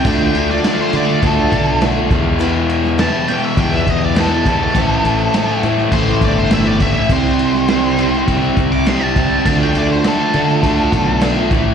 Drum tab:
CC |x-x-x-x-x-x-x-x-|x-x-x-x-x-x-x-x-|x-x-x-x-x-x-x-x-|x-x-x-x-x-x-x-x-|
SD |---oo--o----o---|---oo-------o---|----o--o----o---|---oo--o----o---|
BD |o-------o-o---o-|--------o-o---o-|o-------o-o---o-|o-------o-o---o-|

CC |x-x-x-x-x-x-x-x-|
SD |----o--o----o---|
BD |o-------o-o---o-|